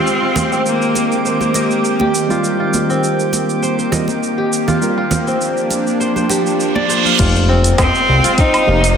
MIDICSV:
0, 0, Header, 1, 10, 480
1, 0, Start_track
1, 0, Tempo, 594059
1, 51, Time_signature, 4, 2, 24, 8
1, 7249, End_track
2, 0, Start_track
2, 0, Title_t, "Synth texture"
2, 0, Program_c, 0, 99
2, 0, Note_on_c, 0, 67, 79
2, 0, Note_on_c, 0, 79, 82
2, 5815, Note_off_c, 0, 67, 0
2, 5816, Note_off_c, 0, 79, 0
2, 7249, End_track
3, 0, Start_track
3, 0, Title_t, "Kora"
3, 0, Program_c, 1, 46
3, 0, Note_on_c, 1, 65, 61
3, 0, Note_on_c, 1, 67, 68
3, 0, Note_on_c, 1, 72, 59
3, 0, Note_on_c, 1, 75, 67
3, 174, Note_off_c, 1, 65, 0
3, 175, Note_off_c, 1, 72, 0
3, 177, Note_on_c, 1, 65, 63
3, 192, Note_off_c, 1, 75, 0
3, 417, Note_on_c, 1, 60, 65
3, 836, Note_off_c, 1, 67, 0
3, 1011, Note_on_c, 1, 72, 73
3, 1136, Note_off_c, 1, 72, 0
3, 1139, Note_on_c, 1, 72, 60
3, 1253, Note_on_c, 1, 75, 67
3, 1400, Note_off_c, 1, 65, 0
3, 1621, Note_on_c, 1, 67, 70
3, 1860, Note_on_c, 1, 65, 67
3, 1872, Note_off_c, 1, 60, 0
3, 2097, Note_off_c, 1, 65, 0
3, 2098, Note_off_c, 1, 72, 0
3, 2100, Note_on_c, 1, 65, 67
3, 2118, Note_off_c, 1, 75, 0
3, 2341, Note_on_c, 1, 60, 68
3, 2762, Note_off_c, 1, 67, 0
3, 2930, Note_on_c, 1, 72, 72
3, 3056, Note_off_c, 1, 72, 0
3, 3059, Note_on_c, 1, 72, 61
3, 3168, Note_on_c, 1, 75, 67
3, 3323, Note_off_c, 1, 65, 0
3, 3538, Note_on_c, 1, 67, 72
3, 3779, Note_on_c, 1, 65, 62
3, 3796, Note_off_c, 1, 60, 0
3, 4017, Note_off_c, 1, 65, 0
3, 4019, Note_off_c, 1, 72, 0
3, 4020, Note_on_c, 1, 65, 66
3, 4033, Note_off_c, 1, 75, 0
3, 4259, Note_on_c, 1, 60, 69
3, 4679, Note_off_c, 1, 67, 0
3, 4850, Note_on_c, 1, 72, 73
3, 4974, Note_off_c, 1, 72, 0
3, 4978, Note_on_c, 1, 72, 62
3, 5089, Note_on_c, 1, 67, 70
3, 5243, Note_off_c, 1, 65, 0
3, 5458, Note_on_c, 1, 74, 95
3, 5566, Note_off_c, 1, 72, 0
3, 5570, Note_on_c, 1, 72, 72
3, 5698, Note_on_c, 1, 77, 69
3, 5714, Note_off_c, 1, 60, 0
3, 5810, Note_on_c, 1, 65, 78
3, 6050, Note_on_c, 1, 60, 77
3, 6230, Note_off_c, 1, 67, 0
3, 6288, Note_on_c, 1, 75, 85
3, 6337, Note_off_c, 1, 74, 0
3, 6505, Note_off_c, 1, 77, 0
3, 6529, Note_off_c, 1, 72, 0
3, 6656, Note_off_c, 1, 65, 0
3, 6659, Note_on_c, 1, 65, 79
3, 6768, Note_off_c, 1, 60, 0
3, 6771, Note_on_c, 1, 60, 82
3, 7012, Note_on_c, 1, 67, 74
3, 7153, Note_off_c, 1, 75, 0
3, 7249, Note_off_c, 1, 60, 0
3, 7249, Note_off_c, 1, 65, 0
3, 7249, Note_off_c, 1, 67, 0
3, 7249, End_track
4, 0, Start_track
4, 0, Title_t, "Cello"
4, 0, Program_c, 2, 42
4, 0, Note_on_c, 2, 60, 85
4, 534, Note_off_c, 2, 60, 0
4, 537, Note_on_c, 2, 58, 82
4, 982, Note_off_c, 2, 58, 0
4, 1018, Note_on_c, 2, 58, 73
4, 1702, Note_off_c, 2, 58, 0
4, 6306, Note_on_c, 2, 60, 106
4, 6784, Note_on_c, 2, 63, 106
4, 6797, Note_off_c, 2, 60, 0
4, 7249, Note_off_c, 2, 63, 0
4, 7249, End_track
5, 0, Start_track
5, 0, Title_t, "Synth drone"
5, 0, Program_c, 3, 95
5, 0, Note_on_c, 3, 51, 78
5, 0, Note_on_c, 3, 56, 75
5, 0, Note_on_c, 3, 60, 69
5, 46, Note_on_c, 3, 67, 84
5, 1937, Note_off_c, 3, 56, 0
5, 1964, Note_on_c, 3, 58, 76
5, 3855, Note_off_c, 3, 60, 0
5, 3856, Note_off_c, 3, 51, 0
5, 3889, Note_on_c, 3, 62, 80
5, 3892, Note_on_c, 3, 53, 79
5, 5775, Note_off_c, 3, 58, 0
5, 5776, Note_off_c, 3, 67, 0
5, 5791, Note_off_c, 3, 62, 0
5, 5793, Note_off_c, 3, 53, 0
5, 5811, Note_on_c, 3, 56, 79
5, 5811, Note_on_c, 3, 77, 102
5, 5813, Note_on_c, 3, 60, 86
5, 5813, Note_on_c, 3, 65, 79
5, 7249, Note_off_c, 3, 56, 0
5, 7249, Note_off_c, 3, 60, 0
5, 7249, Note_off_c, 3, 65, 0
5, 7249, Note_off_c, 3, 77, 0
5, 7249, End_track
6, 0, Start_track
6, 0, Title_t, "Tine electric piano"
6, 0, Program_c, 4, 4
6, 1840, Note_on_c, 4, 55, 78
6, 1850, Note_on_c, 4, 60, 71
6, 1862, Note_on_c, 4, 65, 74
6, 1872, Note_on_c, 4, 67, 86
6, 3135, Note_off_c, 4, 55, 0
6, 3139, Note_off_c, 4, 60, 0
6, 3145, Note_off_c, 4, 65, 0
6, 3150, Note_off_c, 4, 67, 0
6, 3160, Note_on_c, 4, 55, 73
6, 3165, Note_on_c, 4, 60, 70
6, 3171, Note_on_c, 4, 65, 71
6, 3176, Note_on_c, 4, 70, 83
6, 3275, Note_off_c, 4, 55, 0
6, 3277, Note_off_c, 4, 60, 0
6, 3281, Note_off_c, 4, 65, 0
6, 3283, Note_off_c, 4, 70, 0
6, 3888, Note_on_c, 4, 55, 75
6, 3893, Note_on_c, 4, 60, 66
6, 3898, Note_on_c, 4, 65, 68
6, 3904, Note_on_c, 4, 70, 79
6, 4059, Note_off_c, 4, 55, 0
6, 4061, Note_off_c, 4, 60, 0
6, 4063, Note_off_c, 4, 65, 0
6, 4067, Note_off_c, 4, 70, 0
6, 7003, Note_on_c, 4, 48, 84
6, 7008, Note_on_c, 4, 53, 75
6, 7014, Note_on_c, 4, 58, 80
6, 7018, Note_on_c, 4, 63, 88
6, 7116, Note_off_c, 4, 48, 0
6, 7119, Note_off_c, 4, 53, 0
6, 7122, Note_off_c, 4, 58, 0
6, 7124, Note_off_c, 4, 63, 0
6, 7249, End_track
7, 0, Start_track
7, 0, Title_t, "Analog synth bass"
7, 0, Program_c, 5, 38
7, 5812, Note_on_c, 5, 29, 100
7, 6247, Note_off_c, 5, 29, 0
7, 6291, Note_on_c, 5, 29, 78
7, 6387, Note_off_c, 5, 29, 0
7, 6535, Note_on_c, 5, 36, 86
7, 6629, Note_off_c, 5, 36, 0
7, 7011, Note_on_c, 5, 29, 98
7, 7249, Note_off_c, 5, 29, 0
7, 7249, End_track
8, 0, Start_track
8, 0, Title_t, "Impact"
8, 0, Program_c, 6, 103
8, 5812, Note_on_c, 6, 60, 71
8, 7249, Note_off_c, 6, 60, 0
8, 7249, End_track
9, 0, Start_track
9, 0, Title_t, "Reverse cymbal"
9, 0, Program_c, 7, 119
9, 4850, Note_on_c, 7, 60, 68
9, 5811, Note_off_c, 7, 60, 0
9, 7249, End_track
10, 0, Start_track
10, 0, Title_t, "Drums"
10, 56, Note_on_c, 9, 82, 40
10, 137, Note_off_c, 9, 82, 0
10, 288, Note_on_c, 9, 63, 78
10, 288, Note_on_c, 9, 64, 91
10, 295, Note_on_c, 9, 82, 64
10, 369, Note_off_c, 9, 63, 0
10, 369, Note_off_c, 9, 64, 0
10, 375, Note_off_c, 9, 82, 0
10, 423, Note_on_c, 9, 82, 28
10, 504, Note_off_c, 9, 82, 0
10, 534, Note_on_c, 9, 82, 43
10, 615, Note_off_c, 9, 82, 0
10, 662, Note_on_c, 9, 82, 27
10, 742, Note_off_c, 9, 82, 0
10, 770, Note_on_c, 9, 62, 50
10, 774, Note_on_c, 9, 82, 68
10, 851, Note_off_c, 9, 62, 0
10, 855, Note_off_c, 9, 82, 0
10, 903, Note_on_c, 9, 82, 29
10, 984, Note_off_c, 9, 82, 0
10, 1015, Note_on_c, 9, 82, 39
10, 1095, Note_off_c, 9, 82, 0
10, 1136, Note_on_c, 9, 63, 67
10, 1142, Note_on_c, 9, 82, 27
10, 1217, Note_off_c, 9, 63, 0
10, 1222, Note_off_c, 9, 82, 0
10, 1247, Note_on_c, 9, 62, 57
10, 1251, Note_on_c, 9, 82, 75
10, 1328, Note_off_c, 9, 62, 0
10, 1332, Note_off_c, 9, 82, 0
10, 1380, Note_on_c, 9, 82, 29
10, 1461, Note_off_c, 9, 82, 0
10, 1491, Note_on_c, 9, 82, 40
10, 1572, Note_off_c, 9, 82, 0
10, 1613, Note_on_c, 9, 62, 53
10, 1622, Note_on_c, 9, 63, 77
10, 1694, Note_off_c, 9, 62, 0
10, 1703, Note_off_c, 9, 63, 0
10, 1734, Note_on_c, 9, 82, 70
10, 1814, Note_off_c, 9, 82, 0
10, 1861, Note_on_c, 9, 63, 33
10, 1863, Note_on_c, 9, 82, 31
10, 1942, Note_off_c, 9, 63, 0
10, 1944, Note_off_c, 9, 82, 0
10, 1972, Note_on_c, 9, 82, 40
10, 2053, Note_off_c, 9, 82, 0
10, 2212, Note_on_c, 9, 63, 72
10, 2212, Note_on_c, 9, 82, 72
10, 2293, Note_off_c, 9, 63, 0
10, 2293, Note_off_c, 9, 82, 0
10, 2343, Note_on_c, 9, 82, 31
10, 2424, Note_off_c, 9, 82, 0
10, 2454, Note_on_c, 9, 82, 44
10, 2535, Note_off_c, 9, 82, 0
10, 2582, Note_on_c, 9, 82, 29
10, 2662, Note_off_c, 9, 82, 0
10, 2690, Note_on_c, 9, 62, 56
10, 2695, Note_on_c, 9, 82, 69
10, 2771, Note_off_c, 9, 62, 0
10, 2776, Note_off_c, 9, 82, 0
10, 2822, Note_on_c, 9, 82, 31
10, 2903, Note_off_c, 9, 82, 0
10, 2934, Note_on_c, 9, 82, 43
10, 3015, Note_off_c, 9, 82, 0
10, 3061, Note_on_c, 9, 82, 29
10, 3142, Note_off_c, 9, 82, 0
10, 3168, Note_on_c, 9, 64, 90
10, 3175, Note_on_c, 9, 82, 70
10, 3249, Note_off_c, 9, 64, 0
10, 3256, Note_off_c, 9, 82, 0
10, 3295, Note_on_c, 9, 62, 51
10, 3305, Note_on_c, 9, 82, 31
10, 3376, Note_off_c, 9, 62, 0
10, 3386, Note_off_c, 9, 82, 0
10, 3419, Note_on_c, 9, 82, 40
10, 3500, Note_off_c, 9, 82, 0
10, 3658, Note_on_c, 9, 82, 70
10, 3739, Note_off_c, 9, 82, 0
10, 3780, Note_on_c, 9, 64, 81
10, 3784, Note_on_c, 9, 82, 31
10, 3860, Note_off_c, 9, 64, 0
10, 3865, Note_off_c, 9, 82, 0
10, 3895, Note_on_c, 9, 82, 38
10, 3975, Note_off_c, 9, 82, 0
10, 4127, Note_on_c, 9, 63, 72
10, 4128, Note_on_c, 9, 64, 92
10, 4132, Note_on_c, 9, 82, 69
10, 4208, Note_off_c, 9, 63, 0
10, 4209, Note_off_c, 9, 64, 0
10, 4213, Note_off_c, 9, 82, 0
10, 4261, Note_on_c, 9, 82, 31
10, 4342, Note_off_c, 9, 82, 0
10, 4373, Note_on_c, 9, 82, 40
10, 4454, Note_off_c, 9, 82, 0
10, 4502, Note_on_c, 9, 82, 27
10, 4583, Note_off_c, 9, 82, 0
10, 4610, Note_on_c, 9, 62, 55
10, 4613, Note_on_c, 9, 82, 68
10, 4690, Note_off_c, 9, 62, 0
10, 4694, Note_off_c, 9, 82, 0
10, 4743, Note_on_c, 9, 82, 30
10, 4824, Note_off_c, 9, 82, 0
10, 4854, Note_on_c, 9, 82, 41
10, 4935, Note_off_c, 9, 82, 0
10, 4978, Note_on_c, 9, 63, 61
10, 4983, Note_on_c, 9, 82, 29
10, 5059, Note_off_c, 9, 63, 0
10, 5063, Note_off_c, 9, 82, 0
10, 5086, Note_on_c, 9, 62, 61
10, 5094, Note_on_c, 9, 82, 74
10, 5167, Note_off_c, 9, 62, 0
10, 5175, Note_off_c, 9, 82, 0
10, 5223, Note_on_c, 9, 82, 30
10, 5304, Note_off_c, 9, 82, 0
10, 5334, Note_on_c, 9, 82, 42
10, 5415, Note_off_c, 9, 82, 0
10, 5458, Note_on_c, 9, 63, 64
10, 5462, Note_on_c, 9, 62, 42
10, 5538, Note_off_c, 9, 63, 0
10, 5542, Note_off_c, 9, 62, 0
10, 5574, Note_on_c, 9, 82, 72
10, 5655, Note_off_c, 9, 82, 0
10, 5699, Note_on_c, 9, 63, 35
10, 5705, Note_on_c, 9, 82, 32
10, 5780, Note_off_c, 9, 63, 0
10, 5785, Note_off_c, 9, 82, 0
10, 5809, Note_on_c, 9, 42, 59
10, 5809, Note_on_c, 9, 49, 94
10, 5812, Note_on_c, 9, 36, 100
10, 5815, Note_on_c, 9, 82, 50
10, 5890, Note_off_c, 9, 42, 0
10, 5890, Note_off_c, 9, 49, 0
10, 5893, Note_off_c, 9, 36, 0
10, 5896, Note_off_c, 9, 82, 0
10, 5945, Note_on_c, 9, 82, 33
10, 6026, Note_off_c, 9, 82, 0
10, 6176, Note_on_c, 9, 42, 45
10, 6182, Note_on_c, 9, 82, 65
10, 6257, Note_off_c, 9, 42, 0
10, 6262, Note_off_c, 9, 82, 0
10, 6289, Note_on_c, 9, 38, 104
10, 6289, Note_on_c, 9, 42, 60
10, 6289, Note_on_c, 9, 77, 81
10, 6292, Note_on_c, 9, 36, 106
10, 6295, Note_on_c, 9, 82, 58
10, 6369, Note_off_c, 9, 38, 0
10, 6369, Note_off_c, 9, 42, 0
10, 6369, Note_off_c, 9, 77, 0
10, 6373, Note_off_c, 9, 36, 0
10, 6375, Note_off_c, 9, 82, 0
10, 6423, Note_on_c, 9, 82, 35
10, 6504, Note_off_c, 9, 82, 0
10, 6660, Note_on_c, 9, 42, 46
10, 6666, Note_on_c, 9, 82, 64
10, 6740, Note_off_c, 9, 42, 0
10, 6746, Note_off_c, 9, 82, 0
10, 6770, Note_on_c, 9, 42, 52
10, 6772, Note_on_c, 9, 36, 98
10, 6776, Note_on_c, 9, 82, 54
10, 6851, Note_off_c, 9, 42, 0
10, 6853, Note_off_c, 9, 36, 0
10, 6857, Note_off_c, 9, 82, 0
10, 6900, Note_on_c, 9, 42, 30
10, 6900, Note_on_c, 9, 77, 77
10, 6905, Note_on_c, 9, 82, 33
10, 6980, Note_off_c, 9, 42, 0
10, 6980, Note_off_c, 9, 77, 0
10, 6986, Note_off_c, 9, 82, 0
10, 7141, Note_on_c, 9, 42, 47
10, 7147, Note_on_c, 9, 82, 67
10, 7222, Note_off_c, 9, 42, 0
10, 7228, Note_off_c, 9, 82, 0
10, 7249, End_track
0, 0, End_of_file